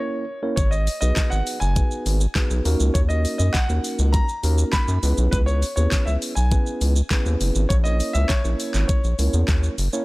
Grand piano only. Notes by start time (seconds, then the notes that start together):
Already playing: C#5
0.56 C#5
0.71 D#5
1.01 D#5
1.30 F#5
1.60 G#5
2.94 C#5
3.09 D#5
3.38 D#5
3.53 F#5
4.13 A#5
4.72 B5
5.31 B4
5.46 C#5
5.76 C#5
6.06 E5
6.35 G#5
7.69 C#5
7.84 D#5
8.13 E5
8.28 C#5
8.88 C#5